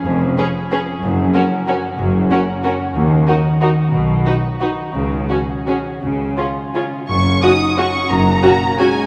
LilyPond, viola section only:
\new Staff \with { instrumentName = "Viola section" } { \time 3/4 \key fis \major \tempo 4 = 179 r4 cis'4 cis'4 | r4 cis'4 cis'4 | r4 cis'4 cis'4 | r4 dis'4 dis'4 |
r4 dis'4 dis'4 | r4 cis'4 cis'4 | r4 cis'4 cis'4 | r4 <cis' fis'>4 <cis' fis'>4 |
r4 <cis' fis'>4 <cis' fis'>4 | }